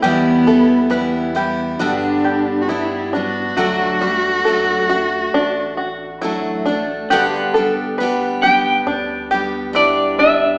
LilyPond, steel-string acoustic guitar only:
\new Staff \with { instrumentName = "Steel-string acoustic guitar" } { \time 4/4 \key g \major \tempo 4 = 68 <e, b, e g b e'>8 <e g b e'>8 <e g b e'>8 <e g b e'>8 <g, d g b d' g'>4 <g b d' g'>8 <g b d'>8 | <d fis a d' fis'>8 <a d' fis'>8 <fis a d' fis'>8 <a d' fis'>4. <fis a d' fis'>8 <a d' fis'>8 | <g, d g b d' g'>8 <g b d' g'>8 <g b d' g'>8 <g b d' g'>4 <g b d' g'>8 <g b d' g'>4 | }